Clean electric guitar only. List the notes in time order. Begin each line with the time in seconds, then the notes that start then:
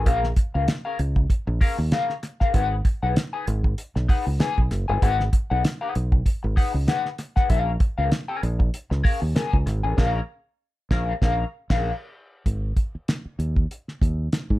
0.05 C#4 G#4 A#4 F5
0.37 muted clean electric guitar stroke
0.54 C#4 G#4 A#4 F5
0.68 muted clean electric guitar stroke
0.85 C#4 G#4 A#4 F5
0.99 muted clean electric guitar stroke
1.16 muted clean electric guitar stroke
1.47 muted clean electric guitar stroke
1.61 C#4 G#4 A#4 F5
1.78 muted clean electric guitar stroke
1.92 C#4 G#4 A#4 F5
2.23 muted clean electric guitar stroke
2.40 C#4 G#4 A#4 F5
2.53 D#4 G#4 B4 F#5
2.85 muted clean electric guitar stroke
3.03 D#4 G#4 B4 F#5
3.16 muted clean electric guitar stroke
3.33 D#4 G#4 B4 G#5
3.47 muted clean electric guitar stroke
3.64 muted clean electric guitar stroke
3.96 muted clean electric guitar stroke
4.08 D#4 G#4 B4 F#5
4.26 muted clean electric guitar stroke
4.40 D#4 G#4 B4 G#5
4.71 muted clean electric guitar stroke
4.88 D#4 G#4 B4 G#5
5.02 D#4 G#4 B4 F#5
5.33 muted clean electric guitar stroke
5.50 D#4 G#4 B4 F#5
5.64 muted clean electric guitar stroke
5.81 D#4 G#4 B4 F#5
5.95 muted clean electric guitar stroke
6.12 muted clean electric guitar stroke
6.43 muted clean electric guitar stroke
6.56 D#4 G#4 B4 F#5
6.74 muted clean electric guitar stroke
6.88 D#4 G#4 B4 F#5
7.19 muted clean electric guitar stroke
7.36 D#4 G#4 B4 F#5
7.49 C#4 G#4 A#4 F5
7.80 muted clean electric guitar stroke
7.98 C#4 G#4 A#4 F5
8.28 C#4 G#4 A#4 G#5
8.42 muted clean electric guitar stroke
8.59 muted clean electric guitar stroke
8.90 muted clean electric guitar stroke
9.03 C#4 G#4 A#4 F5
9.21 muted clean electric guitar stroke
9.35 C#4 G#4 A#4 G#5
9.66 muted clean electric guitar stroke
9.83 C#4 G#4 A#4 G#5
9.97 C#4 G#4 A#4 F5
10.91 C#4 G#4 A#4 F5
11.22 C#4 G#4 A#4 F5
11.70 C#4 G#4 A#4 F5